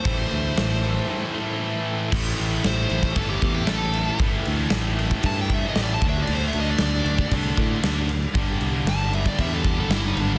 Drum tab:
CC |----------------|x-x-x-x-x-x-x-x-|x-x-x-x-x-x-x-x-|x-x-x-x-x-x-x-x-|
HH |o---o-----------|----------------|----------------|----------------|
SD |----o-----------|----o--o----o---|----o-------o---|----o-------o---|
BD |o---------------|o------oo-o-----|o------oo-o---o-|-------oo-o-----|

CC |x-x-x-x-x-x-x-x-|
HH |----------------|
SD |----o--o----o---|
BD |o------oo-o-----|